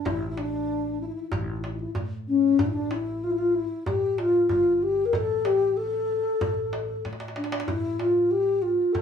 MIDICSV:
0, 0, Header, 1, 4, 480
1, 0, Start_track
1, 0, Tempo, 634921
1, 46, Time_signature, 4, 2, 24, 8
1, 6818, End_track
2, 0, Start_track
2, 0, Title_t, "Alto flute"
2, 0, Program_c, 0, 73
2, 41, Note_on_c, 0, 64, 84
2, 222, Note_off_c, 0, 64, 0
2, 227, Note_on_c, 0, 64, 58
2, 292, Note_on_c, 0, 62, 80
2, 304, Note_off_c, 0, 64, 0
2, 760, Note_off_c, 0, 62, 0
2, 764, Note_on_c, 0, 64, 77
2, 811, Note_off_c, 0, 64, 0
2, 815, Note_on_c, 0, 64, 58
2, 865, Note_off_c, 0, 64, 0
2, 870, Note_on_c, 0, 64, 59
2, 920, Note_off_c, 0, 64, 0
2, 924, Note_on_c, 0, 64, 49
2, 976, Note_off_c, 0, 64, 0
2, 980, Note_on_c, 0, 64, 63
2, 1038, Note_off_c, 0, 64, 0
2, 1042, Note_on_c, 0, 64, 46
2, 1091, Note_off_c, 0, 64, 0
2, 1095, Note_on_c, 0, 64, 51
2, 1152, Note_off_c, 0, 64, 0
2, 1157, Note_on_c, 0, 64, 42
2, 1205, Note_off_c, 0, 64, 0
2, 1209, Note_on_c, 0, 64, 49
2, 1266, Note_off_c, 0, 64, 0
2, 1270, Note_on_c, 0, 64, 47
2, 1320, Note_off_c, 0, 64, 0
2, 1324, Note_on_c, 0, 64, 58
2, 1367, Note_off_c, 0, 64, 0
2, 1372, Note_on_c, 0, 64, 54
2, 1435, Note_off_c, 0, 64, 0
2, 1722, Note_on_c, 0, 61, 80
2, 1958, Note_on_c, 0, 62, 80
2, 1969, Note_off_c, 0, 61, 0
2, 2013, Note_on_c, 0, 64, 70
2, 2024, Note_off_c, 0, 62, 0
2, 2067, Note_on_c, 0, 62, 86
2, 2078, Note_off_c, 0, 64, 0
2, 2201, Note_on_c, 0, 64, 83
2, 2212, Note_off_c, 0, 62, 0
2, 2447, Note_on_c, 0, 65, 83
2, 2459, Note_off_c, 0, 64, 0
2, 2500, Note_on_c, 0, 64, 79
2, 2511, Note_off_c, 0, 65, 0
2, 2559, Note_on_c, 0, 65, 85
2, 2570, Note_off_c, 0, 64, 0
2, 2682, Note_on_c, 0, 64, 79
2, 2694, Note_off_c, 0, 65, 0
2, 2924, Note_off_c, 0, 64, 0
2, 2927, Note_on_c, 0, 67, 83
2, 3166, Note_on_c, 0, 65, 87
2, 3177, Note_off_c, 0, 67, 0
2, 3398, Note_off_c, 0, 65, 0
2, 3402, Note_on_c, 0, 65, 89
2, 3592, Note_off_c, 0, 65, 0
2, 3592, Note_on_c, 0, 65, 68
2, 3650, Note_on_c, 0, 67, 88
2, 3661, Note_off_c, 0, 65, 0
2, 3822, Note_on_c, 0, 70, 63
2, 3833, Note_off_c, 0, 67, 0
2, 3881, Note_on_c, 0, 69, 100
2, 3892, Note_off_c, 0, 70, 0
2, 4124, Note_on_c, 0, 67, 92
2, 4136, Note_off_c, 0, 69, 0
2, 4362, Note_on_c, 0, 69, 94
2, 4373, Note_off_c, 0, 67, 0
2, 5323, Note_off_c, 0, 69, 0
2, 5571, Note_on_c, 0, 62, 66
2, 5801, Note_on_c, 0, 64, 80
2, 5813, Note_off_c, 0, 62, 0
2, 6042, Note_on_c, 0, 65, 73
2, 6054, Note_off_c, 0, 64, 0
2, 6283, Note_on_c, 0, 67, 83
2, 6295, Note_off_c, 0, 65, 0
2, 6516, Note_on_c, 0, 65, 73
2, 6528, Note_off_c, 0, 67, 0
2, 6749, Note_on_c, 0, 69, 77
2, 6761, Note_off_c, 0, 65, 0
2, 6818, Note_off_c, 0, 69, 0
2, 6818, End_track
3, 0, Start_track
3, 0, Title_t, "Upright bass"
3, 0, Program_c, 1, 32
3, 40, Note_on_c, 1, 33, 93
3, 822, Note_off_c, 1, 33, 0
3, 1002, Note_on_c, 1, 33, 94
3, 1394, Note_off_c, 1, 33, 0
3, 1479, Note_on_c, 1, 45, 84
3, 1872, Note_off_c, 1, 45, 0
3, 1958, Note_on_c, 1, 33, 95
3, 2741, Note_off_c, 1, 33, 0
3, 2928, Note_on_c, 1, 33, 84
3, 3316, Note_off_c, 1, 33, 0
3, 3409, Note_on_c, 1, 31, 76
3, 3797, Note_off_c, 1, 31, 0
3, 3891, Note_on_c, 1, 33, 90
3, 4668, Note_off_c, 1, 33, 0
3, 4847, Note_on_c, 1, 33, 94
3, 5235, Note_off_c, 1, 33, 0
3, 5328, Note_on_c, 1, 45, 75
3, 5716, Note_off_c, 1, 45, 0
3, 5809, Note_on_c, 1, 33, 90
3, 6586, Note_off_c, 1, 33, 0
3, 6762, Note_on_c, 1, 33, 84
3, 6818, Note_off_c, 1, 33, 0
3, 6818, End_track
4, 0, Start_track
4, 0, Title_t, "Darbuka"
4, 44, Note_on_c, 9, 64, 88
4, 120, Note_off_c, 9, 64, 0
4, 283, Note_on_c, 9, 63, 55
4, 359, Note_off_c, 9, 63, 0
4, 398, Note_on_c, 9, 62, 21
4, 474, Note_off_c, 9, 62, 0
4, 995, Note_on_c, 9, 64, 87
4, 1071, Note_off_c, 9, 64, 0
4, 1239, Note_on_c, 9, 63, 57
4, 1314, Note_off_c, 9, 63, 0
4, 1354, Note_on_c, 9, 62, 24
4, 1430, Note_off_c, 9, 62, 0
4, 1473, Note_on_c, 9, 64, 80
4, 1549, Note_off_c, 9, 64, 0
4, 1958, Note_on_c, 9, 64, 85
4, 2033, Note_off_c, 9, 64, 0
4, 2198, Note_on_c, 9, 63, 63
4, 2274, Note_off_c, 9, 63, 0
4, 2323, Note_on_c, 9, 62, 24
4, 2398, Note_off_c, 9, 62, 0
4, 2921, Note_on_c, 9, 64, 84
4, 2996, Note_off_c, 9, 64, 0
4, 3162, Note_on_c, 9, 63, 58
4, 3238, Note_off_c, 9, 63, 0
4, 3281, Note_on_c, 9, 62, 24
4, 3357, Note_off_c, 9, 62, 0
4, 3397, Note_on_c, 9, 64, 81
4, 3473, Note_off_c, 9, 64, 0
4, 3878, Note_on_c, 9, 64, 82
4, 3954, Note_off_c, 9, 64, 0
4, 4120, Note_on_c, 9, 63, 68
4, 4196, Note_off_c, 9, 63, 0
4, 4242, Note_on_c, 9, 62, 23
4, 4318, Note_off_c, 9, 62, 0
4, 4600, Note_on_c, 9, 62, 25
4, 4676, Note_off_c, 9, 62, 0
4, 4726, Note_on_c, 9, 62, 22
4, 4802, Note_off_c, 9, 62, 0
4, 4847, Note_on_c, 9, 64, 88
4, 4923, Note_off_c, 9, 64, 0
4, 5087, Note_on_c, 9, 63, 67
4, 5163, Note_off_c, 9, 63, 0
4, 5210, Note_on_c, 9, 62, 24
4, 5285, Note_off_c, 9, 62, 0
4, 5329, Note_on_c, 9, 63, 54
4, 5388, Note_on_c, 9, 62, 54
4, 5405, Note_off_c, 9, 63, 0
4, 5443, Note_on_c, 9, 63, 59
4, 5464, Note_off_c, 9, 62, 0
4, 5506, Note_on_c, 9, 62, 66
4, 5519, Note_off_c, 9, 63, 0
4, 5564, Note_on_c, 9, 63, 67
4, 5581, Note_off_c, 9, 62, 0
4, 5624, Note_on_c, 9, 62, 76
4, 5639, Note_off_c, 9, 63, 0
4, 5687, Note_on_c, 9, 63, 89
4, 5699, Note_off_c, 9, 62, 0
4, 5744, Note_on_c, 9, 62, 84
4, 5763, Note_off_c, 9, 63, 0
4, 5804, Note_on_c, 9, 64, 82
4, 5820, Note_off_c, 9, 62, 0
4, 5880, Note_off_c, 9, 64, 0
4, 6044, Note_on_c, 9, 63, 56
4, 6120, Note_off_c, 9, 63, 0
4, 6168, Note_on_c, 9, 62, 22
4, 6243, Note_off_c, 9, 62, 0
4, 6765, Note_on_c, 9, 64, 82
4, 6818, Note_off_c, 9, 64, 0
4, 6818, End_track
0, 0, End_of_file